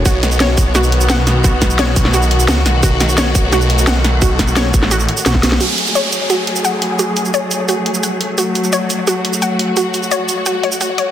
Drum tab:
HH |x-x-x-x-x-x-x-x-|x-x-x-o-x-x-x-x-|x-x-x-x-x-x-x-x-|x-x-x-o-x-x-x-x-|
SH |x-xxx-x-xx-xx-x-|x-xxx-x-xx-xx-x-|x-xxx-x-xx-xx-x-|x-xxx-x-xx-xx-x-|
SD |--o-o---o---o-o-|--o-o--o----o-o-|--o-o---o---o-o-|--o-o--o----oooo|
BD |o-----o---------|o-o---o---------|o-----o---------|o-o---o------o--|

HH |x-x-x-x-x-x-x-x-|x-x-x-x-x-x-x-x-|x-x-x-x-x-x-x-x-|x-x-x-x-x-x-x-x-|
SH |x-xxx-x-x--xx---|x-xxx-x-x--xx---|x-xxx-x-x--xx---|x-xxx-x-x--xx---|
SD |----------------|----------------|----------------|----------------|
BD |----------------|----------------|----------------|----------------|